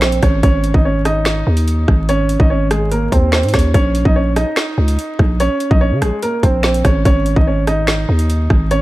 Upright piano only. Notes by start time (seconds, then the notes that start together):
0.02 C4 C5
0.22 C#4 C#5
0.43 C#4 C#5
0.74 D#4 D#5
0.85 C#4 C#5
1.05 D#4 D#5
2.09 C#4 C#5
2.40 D#4 D#5
2.50 C#4 C#5
2.71 G#3 G#4
2.91 A#3 A#4
3.12 C4 C5
3.33 C4 C5
3.54 C#4 C#5
3.74 C#4 C#5
4.05 D#4 D#5
4.16 C#4 C#5
4.36 D#4 D#5
5.40 C#4 C#5
5.71 D#4 D#5
5.81 C#4 C#5
6.01 G#3 G#4
6.23 A#3 A#4
6.43 C4 C5
6.64 C4 C5
6.85 C#4 C#5
7.05 C#4 C#5
7.36 D#4 D#5
7.47 C#4 C#5
7.67 D#4 D#5
8.71 C#4 C#5